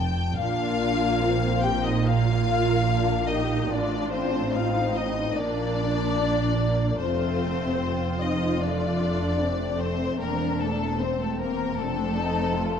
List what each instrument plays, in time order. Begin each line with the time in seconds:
Already playing: double bass section F1, cello section F2, violin section G5
0.37 double bass section A#1, cello section A#2, violin section A#3 D4 F5, viola section F4
1.22 violin section C4
1.63 viola section G4, violin section G5
1.84 viola section D#4, violin section D#5
2.05 violin section A#3 F5, viola section F4
2.48 violin section A#3
2.88 violin section D4
3.28 viola section D#4, violin section G4 D#5
3.70 double bass section A1, cello section A2, violin section D4 F4 D5, viola section D4
4.12 viola section C4, violin section C5
4.54 violin section C4 D#4 F5, viola section F4
4.95 viola section D#4, violin section D#5
5.36 double bass section A#1, cello section A#2, violin section A#3 D4 D5, viola section D4
6.19 violin section D4
6.59 violin section A#3
6.98 double bass section F1, cello section F2, violin section A3 F4 C5, viola section C4
7.81 violin section C4 F4
8.21 viola section D#4, violin section D#5
8.60 violin section A3 D5, viola section D4
9.39 violin section A3 C4
9.80 viola section C4, violin section C5
10.20 double bass section E1, cello section E2, viola section A#3, violin section D4 A#4
10.61 viola section A3, violin section A4
11.00 violin section C4 C5, viola section C4
11.20 viola section A3, violin section A4
11.39 viola section A#3, violin section A#4
11.79 double bass section F1, cello section F2, viola section A3, violin section C4 D4 A4
12.19 violin section D#4
12.59 violin section A3 F4